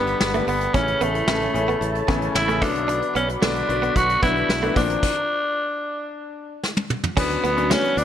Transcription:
0.00 0.13 G1 medium
0.00 0.34 D3 medium
0.00 0.34 G3 medium
0.00 0.34 B3 medium
0.00 0.44 B3 medium
0.00 0.35 D4 medium
0.00 0.72 G4 medium
0.00 0.72 B4 medium
0.00 0.72 B5 medium
0.07 closed hi-hat soft
0.21 0.40 G1 medium
0.21 muted clean electric guitar stroke soft
0.21 snare loud
0.34 0.59 D3 medium
0.34 0.59 G3 medium
0.34 0.43 A3 medium
0.34 0.60 B3 medium
0.34 0.60 D4 medium
0.34 closed hi-hat soft
0.47 0.67 G1 medium
0.47 0.57 B3 medium
0.47 0.76 B3 medium
0.47 open hi-hat medium
0.61 closed hi-hat soft
0.74 0.94 A1 loud
0.74 1.08 C#3 medium
0.74 1.08 E3 medium
0.74 1.08 A3 medium
0.74 0.83 C#4 medium
0.74 1.03 C#4 loud
0.74 1.08 C#4 medium
0.74 2.60 E4 medium
0.74 2.60 A4 medium
0.74 2.60 C#5 medium
0.74 2.61 A5 medium
0.74 kick medium
0.74 closed hi-hat medium
0.88 closed hi-hat medium
1.01 1.20 A1 loud
1.01 2.09 A3 medium
1.01 1.10 B3 medium
1.01 closed hi-hat medium
1.14 muted clean electric guitar stroke soft
1.14 closed hi-hat medium
1.27 1.47 A1 medium
1.27 1.45 C#3 medium
1.27 1.45 E3 medium
1.27 1.37 A3 medium
1.27 1.45 A3 medium
1.27 1.45 C#4 medium
1.27 snare loud
1.41 muted clean electric guitar stroke soft
1.41 closed hi-hat soft
1.54 1.74 A1 medium
1.54 1.88 C#3 medium
1.54 1.88 E3 medium
1.54 1.88 A3 medium
1.54 1.88 C#4 medium
1.54 closed hi-hat medium
1.68 1.77 B3 medium
1.68 closed hi-hat soft
1.81 2.00 A1 loud
1.81 closed hi-hat medium
1.95 closed hi-hat medium
2.08 2.28 A1 loud
2.08 2.33 C#3 medium
2.08 2.33 E3 medium
2.08 2.34 A3 medium
2.08 2.17 B3 medium
2.08 2.34 C#4 medium
2.08 kick loud
2.08 closed hi-hat medium
2.22 closed hi-hat soft
2.35 2.62 A1 medium
2.35 2.64 E4 medium
2.35 muted clean electric guitar stroke soft
2.35 snare loud
2.48 2.62 C#3 medium
2.48 2.62 E3 medium
2.48 2.57 A3 medium
2.48 2.62 A3 medium
2.48 2.62 C#4 medium
2.48 closed hi-hat soft
2.61 3.00 B1 medium
2.61 3.26 D3 medium
2.61 3.26 F#3 medium
2.61 2.70 A3 medium
2.61 3.26 B3 medium
2.61 3.26 D4 medium
2.61 3.16 D4 loud
2.61 4.74 F#4 medium
2.61 4.74 B4 medium
2.61 5.00 D5 medium
2.61 4.74 B5 medium
2.61 kick loud
2.61 open hi-hat medium
2.75 closed hi-hat soft
2.88 2.97 D4 medium
2.88 closed hi-hat medium
3.02 closed hi-hat medium
3.15 3.35 B1 loud
3.15 3.24 B3 medium
3.15 3.28 C#4 medium
3.15 closed hi-hat medium
3.29 muted clean electric guitar stroke soft
3.29 closed hi-hat medium
3.41 3.62 B1 loud
3.41 3.59 D3 medium
3.41 3.59 F#3 medium
3.41 3.51 A3 medium
3.41 3.59 B3 medium
3.41 3.59 D4 medium
3.41 3.98 D4 medium
3.41 snare loud
3.55 muted clean electric guitar stroke soft
3.55 closed hi-hat soft
3.68 3.88 B1 loud
3.68 4.02 D3 medium
3.68 4.02 F#3 medium
3.68 4.03 B3 medium
3.68 4.03 D4 medium
3.68 closed hi-hat medium
3.82 3.91 B3 medium
3.82 closed hi-hat soft
3.96 4.15 B1 loud
3.96 4.22 F#4 loud
3.96 kick medium
3.96 closed hi-hat medium
4.09 closed hi-hat medium
4.22 4.42 B1 loud
4.22 4.47 D3 medium
4.22 4.48 F#3 medium
4.22 4.31 B3 medium
4.22 4.48 B3 medium
4.22 4.48 D4 medium
4.22 4.73 E4 loud
4.22 kick loud
4.22 closed hi-hat medium
4.36 closed hi-hat soft
4.49 4.68 B1 medium
4.49 muted clean electric guitar stroke soft
4.49 snare loud
4.62 4.76 D3 medium
4.62 4.76 F#3 medium
4.62 4.72 A3 medium
4.62 4.76 B3 medium
4.62 4.75 D4 medium
4.62 closed hi-hat medium
4.76 4.96 A#1 loud
4.76 4.97 F3 medium
4.76 4.97 A#3 medium
4.76 4.85 A#3 medium
4.76 4.98 C4 medium
4.76 4.98 D4 medium
4.76 6.60 D4 loud
4.76 5.03 F4 medium
4.76 5.03 C5 medium
4.76 5.03 A#5 medium
4.76 kick loud
4.76 open hi-hat medium
4.90 closed hi-hat soft
5.03 kick loud
5.03 crash medium
6.63 snare medium
6.77 high tom medium
6.90 mid tom medium
7.04 floor tom medium
7.16 7.36 D2 loud
7.16 7.42 F#3 medium
7.16 7.42 B3 medium
7.16 7.43 B3 medium
7.16 7.26 C#4 medium
7.16 7.42 C#4 medium
7.16 7.43 D4 medium
7.16 8.04 F#4 medium
7.16 8.04 B4 medium
7.16 8.04 C#5 medium
7.16 8.04 B5 medium
7.16 kick loud
7.16 crash medium
7.31 closed hi-hat medium
7.44 7.73 D2 loud
7.44 7.53 B3 medium
7.44 7.73 B3 medium
7.44 closed hi-hat medium
7.56 8.04 F#3 medium
7.56 8.04 B3 medium
7.56 8.04 C#4 medium
7.56 8.04 D4 medium
7.56 muted clean electric guitar stroke soft
7.56 closed hi-hat medium
7.70 7.79 A3 medium
7.70 8.00 C#4 medium
7.70 snare loud
7.70 tambourine medium
7.84 muted clean electric guitar stroke soft
7.84 closed hi-hat medium
7.97 8.04 D2 medium
7.97 8.04 D4 medium
7.97 closed hi-hat medium

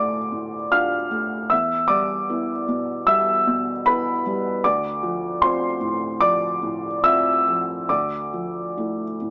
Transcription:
0.00 1.53 D2 soft
0.00 0.16 A2 soft
0.00 1.11 A3 soft
0.00 0.72 D4 soft
0.00 0.72 F4 soft
0.00 1.53 C5 medium
0.00 0.68 D5 medium
0.00 1.53 C6 medium
0.00 0.71 D6 medium
0.32 0.96 A2 soft
0.72 1.08 D4 soft
0.72 1.08 F4 soft
0.72 1.47 F5 medium
0.72 1.51 F6 medium
1.11 1.50 A3 soft
1.50 3.04 E2 soft
1.50 1.87 E5 medium
1.50 1.89 E6 medium
1.88 2.52 G3 soft
1.88 3.03 D5 medium
1.88 3.07 D6 medium
2.29 2.64 B3 soft
2.29 2.65 E4 soft
2.68 3.32 B2 soft
3.07 3.71 G3 soft
3.07 3.83 E5 medium
3.07 3.86 E6 medium
3.47 4.10 B2 soft
3.86 4.22 B3 soft
3.86 4.22 E4 soft
3.86 4.61 B4 medium
3.86 4.64 B5 medium
4.26 4.65 G3 soft
4.64 6.17 D2 medium
4.64 5.38 D5 medium
4.64 5.42 D6 medium
5.03 5.65 F3 soft
5.42 5.77 C4 soft
5.42 5.78 F4 soft
5.42 6.17 C5 medium
5.42 6.21 C6 medium
5.80 6.45 A2 soft
6.20 6.86 F3 soft
6.20 6.99 D5 medium
6.20 7.03 D6 medium
6.62 7.29 A2 soft
7.04 7.42 C4 soft
7.04 7.42 F4 soft
7.04 7.85 E5 medium
7.04 7.89 E6 medium
7.48 7.90 F3 soft
7.89 9.30 D2 soft
7.89 9.30 D5 soft
7.89 9.30 D6 medium
8.33 9.03 F3 soft
8.77 9.17 A3 soft
8.77 9.17 E4 soft
9.22 9.30 A2 soft

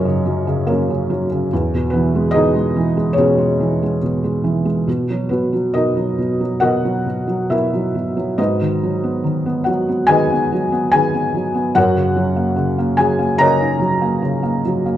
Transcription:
0.00 1.54 F#2 medium
0.00 0.05 C#3 medium
0.00 0.25 F#3 soft
0.00 0.63 C#4 medium
0.00 1.53 D#4 medium
0.00 0.67 A#4 medium
0.00 0.70 C#5 medium
0.00 1.54 D#5 medium
0.05 0.46 C#3 soft
0.25 0.68 F#3 soft
0.47 0.89 C#3 medium
0.66 1.08 F#3 soft
0.66 1.26 A#3 medium
0.66 1.26 C#4 soft
0.66 1.26 A#4 medium
0.90 1.30 C#3 soft
1.10 1.50 F#3 medium
1.32 1.51 C#3 soft
1.53 4.84 E2 medium
1.74 2.34 B2 soft
1.90 2.75 E3 medium
1.90 2.31 B3 soft
1.90 2.34 B4 medium
2.15 2.54 G#3 medium
2.31 3.14 D#4 medium
2.31 3.14 G#4 medium
2.31 3.12 D#5 loud
2.36 3.16 B2 medium
2.56 2.96 G#3 medium
2.76 3.59 E3 soft
2.97 3.36 G#3 soft
3.13 3.96 C#5 medium
3.17 4.01 B2 medium
3.17 3.98 C#4 medium
3.17 3.98 G#4 medium
3.38 3.81 G#3 soft
3.60 4.42 E3 soft
3.83 4.22 G#3 soft
4.02 4.85 B2 soft
4.24 4.64 G#3 soft
4.44 4.86 E3 soft
4.65 4.86 G#3 soft
4.87 5.29 B2 medium
5.10 5.51 F#3 soft
5.29 5.73 B2 soft
5.29 5.71 B3 soft
5.29 5.74 B4 soft
5.53 5.95 F#3 soft
5.74 6.17 B2 soft
5.74 6.58 D#4 medium
5.74 6.58 A#4 medium
5.74 6.60 D#5 medium
5.97 6.39 F#3 soft
6.18 6.61 B2 soft
6.41 6.83 F#3 soft
6.60 7.04 B2 soft
6.60 7.47 F#4 medium
6.60 7.47 A#4 medium
6.60 7.47 D#5 medium
6.60 7.53 F#5 medium
6.85 7.26 F#3 soft
7.06 7.48 B2 soft
7.28 7.72 F#3 soft
7.50 7.93 B2 soft
7.50 8.35 E4 soft
7.50 8.35 A#4 soft
7.50 8.34 E5 medium
7.73 8.15 F#3 soft
7.95 8.37 B2 soft
8.17 8.38 F#3 soft
8.38 11.72 G#2 medium
8.38 9.62 D#4 soft
8.38 9.63 F#4 soft
8.38 9.62 B4 medium
8.38 9.70 D#5 medium
8.62 9.22 D#3 soft
8.83 9.67 F#3 soft
9.03 9.44 B3 soft
9.24 10.07 D#3 soft
9.46 9.87 B3 soft
9.64 10.06 F#4 medium
9.64 10.10 F#5 medium
9.68 10.51 F#3 soft
9.89 10.31 B3 soft
10.07 10.93 D#3 medium
10.07 10.90 G#4 medium
10.07 10.90 B4 medium
10.07 10.90 D#5 medium
10.07 10.89 G#5 medium
10.32 10.71 B3 soft
10.52 11.33 F#3 soft
10.72 11.12 B3 soft
10.92 11.74 D#3 soft
10.92 11.72 G#4 medium
10.92 11.72 B4 medium
10.92 11.71 G#5 medium
11.14 11.53 B3 soft
11.34 11.74 F#3 soft
11.55 11.75 B3 soft
11.75 14.97 F#2 medium
11.75 12.95 F#4 medium
11.75 12.95 A#4 medium
11.75 12.96 C#5 medium
11.75 12.94 F#5 medium
11.95 12.54 C#3 soft
12.16 12.97 F#3 soft
12.36 12.77 A#3 soft
12.56 13.37 C#3 medium
12.78 13.17 A#3 soft
12.97 13.78 F#3 soft
12.97 13.38 G#4 medium
12.97 13.41 G#5 medium
13.19 14.00 A#3 medium
13.38 14.21 C#3 medium
13.38 14.62 A#4 medium
13.38 14.62 C#5 medium
13.38 14.62 D#5 medium
13.38 14.61 A#5 loud
13.60 14.97 D#4 soft
13.80 14.64 F#3 soft
14.02 14.42 A#3 soft
14.22 14.97 C#3 soft
14.43 14.84 A#3 medium
14.65 14.97 F#3 soft
14.86 14.97 A#3 medium

